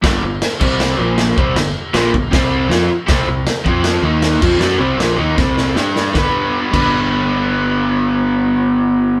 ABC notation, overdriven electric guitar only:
X:1
M:4/4
L:1/8
Q:1/4=157
K:Gmix
V:1 name="Overdriven electric guitar" clef=bass
[G,,D,G,] [G,,D,] z [C,G,C]2 [_B,,F,_B,]2 [C,G,C] | [G,,D,] z [_B,,F,_B,] [G,,D,] [C,G,C]2 [F,CF] z | [C,G,C] [C,G,] z [F,CF]2 [_E,_B,_E]2 [F,CF] | [^F,^C^F] [=C,G,=C] [_B,,=F,_B,] [_E,B,_E] [C,G,C]2 [G,DG]2 |
[G,B,DB] z2 [G,B,DB]4- [G,B,DB]- | [G,B,DB]8 |]